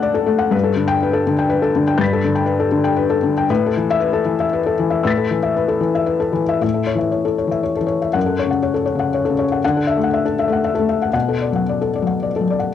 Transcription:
felt piano
Already playing: D3 A3 A4 D5 F#5
0.03 D5
0.14 A4
0.27 A3
0.39 F#5
0.51 G2 B4
0.64 A4
0.76 D3
0.88 G5
1.03 B4
1.13 A4
1.27 D3
1.39 G5
1.49 B4
1.62 A4
1.76 D3
1.88 G5
1.98 G2 B4 G6 A6
2.04 B6
2.13 A4
2.24 D3
2.35 G5
2.46 B4
2.60 A4
2.72 D3
2.84 G5
2.97 B4
3.10 A4
3.23 D3
3.38 G5
3.50 A2 B4
3.66 A4
3.77 E3
3.91 E5
4.00 B4
4.13 A4
4.25 E3
4.40 E5
4.53 B4
4.66 A4
4.79 E3
4.90 E5
5.03 A2 B4 E6 A6
5.10 B6
5.17 A4
5.31 E3
5.43 E5
5.56 B4
5.68 A4
5.81 E3
5.95 E5
6.06 B4
6.20 A4
6.33 E3
6.49 E5
6.61 A2 E5
6.74 A4
6.87 C#5
6.95 E3 E5
7.12 C#5
7.25 A4
7.38 C#5
7.47 E3
7.51 E5
7.63 C#5
7.76 E3 A4
7.86 C#5
8.02 E5
8.13 F#2 F#5
8.26 A4
8.39 C#5
8.46 C#3
8.51 F#5
8.63 C#5
8.74 A4
8.86 C#5
8.95 C#3
8.99 F#5
9.14 C#5
9.25 A4
9.29 C#3
9.39 C#5
9.52 F#5
9.64 D3 F#5
9.77 A4
9.87 E5
9.97 A3
10.03 F#5
10.14 E5
10.25 A4
10.39 E5
10.48 A3
10.52 F#5
10.64 E5
10.75 A4
10.79 A3
10.89 E5
11.02 F#5
11.13 B2 F#5
11.29 A4
11.42 D5
11.52 F#3 F#5
11.69 D5
11.82 A4
11.96 D5
12.02 F#3
12.07 F#5
12.23 D5
12.36 A4
12.41 F#3
12.50 D5
12.59 F#5

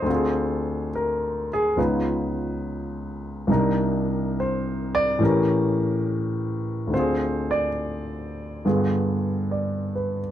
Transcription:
grand piano
Already playing: C5
0.02 D2 D3
0.07 C4 F4
0.13 G#4
0.95 A#4
1.53 G#4
1.77 C#2 C#3 B3 D#4 F4 B4
3.47 C2 C3 D4 D#4
3.52 A#4
4.40 C5
4.95 D5
5.19 A2 E3 C#4 G4
5.24 A#4
6.87 D2 D3
6.93 C4 F4 C5
6.99 G#4
7.51 D5
8.65 G2 D3 B3 F4 G#4
9.51 D5
9.95 B4

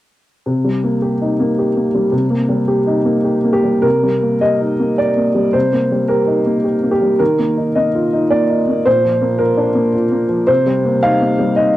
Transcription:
upright piano
0.46 C3
0.65 G3
0.84 A#3
1.02 G4
1.21 D#4
1.40 A#3
1.59 G4
1.76 A#3
1.94 G3
2.12 C3
2.30 A#3
2.49 G3
2.68 G4
2.87 D#4
3.05 A#3
3.24 G4
3.44 A#3
3.53 G4
3.64 G3
3.82 C3 A#4
4.03 G3
4.23 A#3
4.41 G4 D#5
4.61 D#4
4.80 A#3
4.98 G4 D5
5.17 A#3
5.35 G3
5.53 C3 C5
5.73 A#3
5.92 G3
6.08 G4 A#4
6.27 D#4
6.46 A#3
6.64 G4
6.83 A#3
6.91 G4
7.02 G3
7.19 D#3 A#4
7.39 A#3
7.57 D#4
7.75 A#3 D#5
7.95 F4
8.13 D#4
8.30 A#3 D5
8.50 D#4
8.68 A#3
8.85 A#2 C5
9.04 F3
9.21 A#3
9.38 F4 A#4
9.57 D4
9.75 A#3
9.94 F4
10.11 A#3
10.29 F3
10.47 C3 C5
10.66 G3
10.85 A#3
11.03 D#4 F5
11.21 A#3
11.39 G3
11.56 D#4 D#5

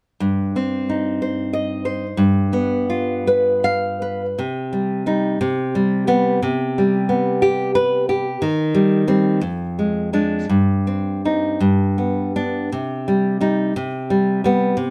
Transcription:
nylon-string guitar
0.20 G2
0.56 C4
0.90 D#4
1.22 C5
1.53 D#5
1.85 C5
2.17 G2
2.53 B3
2.90 F4
3.27 B4
3.64 F5
4.02 B4
4.39 C3
4.73 G3
5.06 G3 D#4
5.41 C3
5.75 G3
6.07 G3 B3
6.42 C3
6.78 G3
7.09 B3
7.42 G4
7.75 B4
8.09 G4
8.42 D#3
8.75 G3
9.07 G3 C4
9.41 F2
9.79 G#3
10.13 G#3 D4
10.49 G2
10.87 C4
11.25 C4 D#4
11.60 G2
11.98 B3
12.36 B3 D4
12.72 C3
13.08 G3
13.41 G3 D#4
13.76 C3
14.10 G3
14.44 G3 B3
14.77 C3

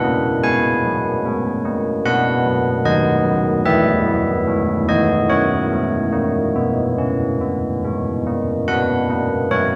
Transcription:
church bells
Already playing: B4 F#5
0.04 A#3
0.44 G#3 G#5
0.84 F#3
1.25 G#3
1.65 A#3
2.06 B3 B4 F#5
2.46 F#3
2.85 D#3 D#5
3.24 F#3
3.65 E3 B4 E5
4.06 F#3
4.47 G#3
4.89 E3 D#5
5.30 F#3 A#4 C#5
5.72 G#3
6.13 A#3
6.56 B3
6.98 C#4
7.41 B3
7.84 G#3
8.27 A#3
8.68 B3 B4 F#5
9.10 A#3
9.51 F#3 C#5

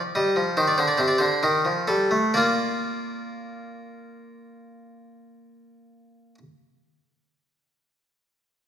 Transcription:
harpsichord
0.15 G3 D#5
0.36 F3
0.57 D#3 C5
0.67 D5
0.78 D3 C5
0.88 D5
0.98 C3 C5
1.08 D5
1.18 D3 C5
1.43 D#3 A#4
1.65 F3
1.88 G3 A4
2.11 A3
2.34 A#3 F4 A#4 D5

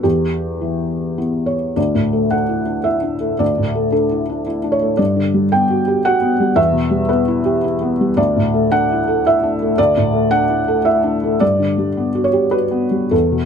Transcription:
felt piano
0.03 E2 G4
0.61 E3
1.18 B3 E4
1.46 C#5
1.76 D2 D5
1.95 A2
2.13 A3
2.31 D4 F#5
2.49 E4
2.66 D4
2.84 E4 E5
3.03 D4
3.20 A3
3.39 D2 D5
3.58 A2
3.75 A3
3.92 D4 A4
4.11 E4
4.30 D4
4.46 E4
4.64 D4
4.72 C#5
4.82 A3
4.97 G2 D5
5.16 D3
5.34 G3
5.52 B3 G5
5.70 F#4
5.88 G4
6.05 F#4 F#5
6.22 B3
6.40 G3
6.56 E2 E5
6.73 B2
6.91 G3
7.09 B3 B4
7.28 E4
7.45 G4
7.64 E4
7.81 B3
8.01 G3
8.17 D2 D5
8.36 A2
8.54 A3
8.72 D4 F#5
8.92 E4
9.08 A4
9.27 E4 E5
9.43 D4
9.62 A3
9.78 D2 D5
9.97 A2
10.13 A3
10.31 D4 F#5
10.49 E4
10.68 A4
10.85 E4 E5
11.04 D4
11.24 A3
11.40 G2 D5
11.60 D3
11.78 G3
11.97 B3
12.15 F#4
12.24 C#5
12.33 G4
12.51 F#4 B4
12.71 B3
12.91 G3
13.11 E2 A4
13.32 B2

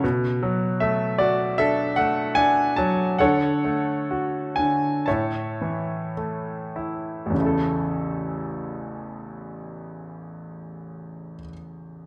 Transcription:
grand piano
0.04 B2
0.43 F#3
0.80 A3 E5
1.18 F#4 D5
1.58 D4 A4 E5
1.96 A3 F#5
2.35 D4 G#5
2.76 F#3 A5
3.18 D3 A4 C#5 F#5
3.65 A3
4.11 F#4
4.56 D3 G#5
5.06 A2 C#5 E5 A5
5.62 E3
6.17 A3
6.76 E4
7.26 A1
7.30 E2 C#3
7.38 A3 E4
7.46 A4

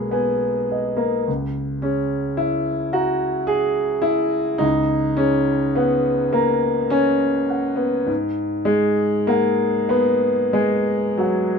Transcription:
grand piano
Already playing: B1 G#3 A#3 B3 G#4 D#5 B5
0.11 B3 G#5
0.71 D#5
0.97 A#3
1.27 C#2
1.82 C#4 G#4
2.37 E4 E5
2.93 F#4 A#5
3.47 G#4 G#5
4.02 E4 E5
4.58 C#2 D#4
5.17 C#4 G#4
5.75 B3 F#5
6.33 A#3 A#5
6.90 C#4 G#5
7.49 F#5
7.76 B3
8.06 G#2
8.65 G#3 G#4
9.27 A#3 F#5
9.89 B3 B5
10.53 G#3 G#5
11.18 F#3 F#5

